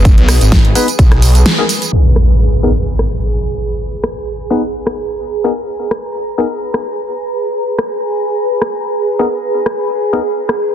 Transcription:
0.00 0.16 F#1 loud
0.00 1.91 G#4 medium
0.00 1.93 B4 medium
0.00 1.95 D#6 medium
0.05 kick loud
0.05 closed hi-hat medium
0.05 tambourine soft
0.18 0.39 B1 medium
0.18 closed hi-hat soft
0.29 cross-stick medium
0.29 open hi-hat loud
0.29 tambourine medium
0.41 0.74 G#1 loud
0.41 closed hi-hat medium
0.41 tambourine soft
0.52 kick loud
0.52 snare loud
0.52 closed hi-hat medium
0.52 tambourine soft
0.65 closed hi-hat soft
0.75 0.87 B3 loud
0.75 0.87 D#4 medium
0.75 0.87 G#4 medium
0.75 0.87 B4 loud
0.75 open hi-hat medium
0.75 tambourine medium
0.88 closed hi-hat medium
0.88 tambourine soft
0.99 1.44 B1 loud
0.99 kick loud
0.99 closed hi-hat medium
0.99 tambourine soft
1.12 cross-stick medium
1.12 closed hi-hat soft
1.22 open hi-hat loud
1.22 tambourine medium
1.35 closed hi-hat medium
1.35 tambourine soft
1.46 snare loud
1.46 closed hi-hat medium
1.46 tambourine soft
1.58 1.64 B3 medium
1.58 1.64 D#4 medium
1.58 1.64 G#4 medium
1.58 1.64 A#4 medium
1.69 open hi-hat medium
1.69 tambourine medium
1.82 closed hi-hat medium
1.82 tambourine soft
1.93 10.75 G#4 medium
1.93 impact medium
2.15 10.75 B4 medium
2.15 cross-stick medium
2.63 2.70 B3 medium
2.63 2.70 D#4 medium
2.63 2.70 G#4 medium
2.63 2.70 A#4 medium
2.99 cross-stick medium
3.48 10.75 A#5 medium
4.04 cross-stick medium
4.50 4.62 B3 medium
4.50 4.62 D#4 medium
4.50 4.62 G#4 medium
4.50 4.62 B4 loud
4.87 cross-stick medium
5.44 5.51 B3 medium
5.44 5.51 D#4 medium
5.44 5.51 G#4 medium
5.44 5.51 A#4 medium
5.91 cross-stick medium
6.38 6.45 B3 medium
6.38 6.45 D#4 medium
6.38 6.45 G#4 medium
6.38 6.45 A#4 medium
6.74 cross-stick medium
7.79 cross-stick medium
8.62 cross-stick medium
9.19 9.26 B3 medium
9.19 9.26 D#4 medium
9.19 9.26 G#4 medium
9.19 9.26 A#4 medium
9.66 cross-stick medium
10.13 10.20 B3 medium
10.13 10.20 D#4 medium
10.13 10.20 G#4 medium
10.13 10.20 A#4 medium
10.49 cross-stick medium

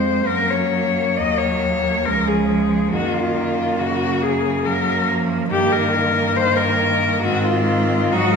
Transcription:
0.00 0.27 F2 soft
0.00 0.26 F3 soft
0.00 0.27 G#3 soft
0.00 0.29 C5 medium
0.27 1.20 F#2 soft
0.27 1.16 F#3 soft
0.27 2.07 A#3 soft
0.27 0.52 A#4 medium
0.50 1.19 C#5 medium
1.18 2.07 D#2 soft
1.18 2.04 F#3 soft
1.18 1.40 D#5 medium
1.38 2.07 C#5 medium
2.05 2.94 C#2 soft
2.05 2.95 F3 soft
2.05 2.92 G#3 soft
2.05 2.29 A#4 medium
2.28 2.92 G#4 medium
2.92 5.49 F#2 medium
2.92 3.82 D#3 soft
2.92 4.62 A#3 soft
2.92 3.16 F#4 medium
3.14 3.81 F4 medium
3.79 4.68 C#3 soft
3.79 4.24 F#4 medium
4.22 4.68 G#4 medium
4.63 5.11 F#3 soft
4.63 5.50 A#3 soft
4.63 5.10 A#4 medium
5.09 5.51 F3 medium
5.51 7.21 G2 medium
5.51 6.36 D#3 medium
5.51 7.26 A#3 medium
5.51 5.74 G4 medium
5.73 6.38 A#4 medium
6.36 7.22 D#3 soft
6.36 6.58 C5 medium
6.57 7.22 A#4 medium
7.22 8.11 G#2 medium
7.22 8.14 D#3 medium
7.22 8.14 C4 medium
7.22 7.46 F#4 medium
7.45 8.14 F4 medium
8.12 8.36 G#2 medium
8.12 8.36 F#3 medium
8.12 8.36 D#4 medium
8.12 8.34 F#4 medium

